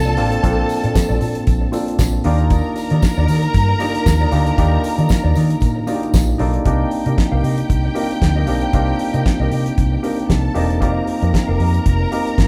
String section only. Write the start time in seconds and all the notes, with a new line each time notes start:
Already playing: A4 A5
2.25 A#4 A#5
6.66 G4 G5
10.30 A4 A5
10.82 A#4 A#5